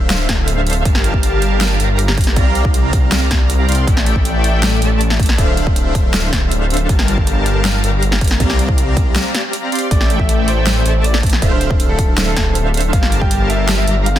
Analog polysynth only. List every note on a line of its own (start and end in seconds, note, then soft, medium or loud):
0.00 0.27 D4 medium
0.00 0.27 A4 medium
0.00 0.27 C5 medium
0.00 0.27 E5 medium
0.00 0.27 F5 loud
0.29 0.83 A4 medium
0.85 1.78 G3 medium
0.85 1.78 G4 medium
0.85 1.78 A#4 medium
0.85 1.78 F5 medium
0.85 1.78 A5 medium
1.80 2.34 G3 loud
1.80 2.34 G4 medium
1.80 2.34 A#4 medium
1.80 2.34 F5 medium
1.80 2.34 A#5 loud
2.36 3.29 C4 medium
2.36 3.29 G4 medium
2.36 3.29 D5 medium
2.36 3.29 F5 medium
2.36 3.29 A#5 medium
3.31 3.66 C4 medium
3.31 3.66 G4 medium
3.31 3.66 D5 medium
3.31 3.66 F5 medium
3.69 3.85 C4 medium
3.69 3.85 G4 medium
3.69 3.85 D5 medium
3.69 3.85 F5 medium
3.69 3.85 C6 medium
3.87 4.79 A3 medium
3.87 4.80 A4 medium
3.87 4.79 D5 medium
3.87 4.79 E5 medium
3.87 4.79 G5 loud
4.82 5.36 A3 medium
4.82 5.36 A4 medium
4.82 5.36 D5 medium
4.82 5.36 E5 medium
4.82 5.36 A5 loud
5.38 6.30 D4 medium
5.38 6.30 A4 medium
5.38 6.30 C5 medium
5.38 6.30 E5 medium
5.38 6.30 F5 loud
6.89 7.81 G3 medium
6.89 7.81 G4 medium
6.89 7.81 A#4 medium
6.89 7.81 F5 medium
6.89 7.81 A5 loud
7.84 8.38 G3 medium
7.84 8.38 G4 medium
7.84 8.38 A#4 medium
7.84 8.38 F5 medium
7.84 8.38 A#5 loud
8.40 9.32 C4 medium
8.40 9.32 G4 medium
8.40 9.32 D5 medium
8.40 9.32 F5 medium
8.40 9.32 A#5 loud
9.34 9.70 C4 medium
9.34 9.70 G4 medium
9.34 9.70 D5 medium
9.34 9.70 F5 medium
9.34 9.70 A#5 medium
9.72 9.89 C4 medium
9.72 9.89 G4 medium
9.72 9.89 D5 medium
9.72 9.89 F5 medium
9.72 9.89 C6 medium
9.91 10.83 A3 medium
9.91 10.83 A4 medium
9.91 10.83 D5 medium
9.91 10.83 E5 medium
10.85 11.40 A3 medium
10.85 11.40 A4 medium
10.85 11.40 D5 medium
10.85 11.40 E5 medium
10.85 11.40 A5 loud
11.42 12.34 D4 medium
11.42 12.34 A4 medium
11.42 12.34 C5 medium
11.42 12.34 E5 medium
11.42 12.34 F5 loud
12.36 12.91 D4 loud
12.36 12.91 A4 medium
12.36 12.91 C5 medium
12.36 12.91 F5 loud
12.93 13.85 G3 medium
12.93 13.85 G4 medium
12.93 13.85 A#4 medium
12.93 13.85 F5 medium
12.93 13.85 A5 loud
13.87 14.19 G3 medium
13.87 14.19 G4 medium
13.87 14.19 A#4 medium
13.87 14.19 F5 medium
13.87 14.19 A#5 loud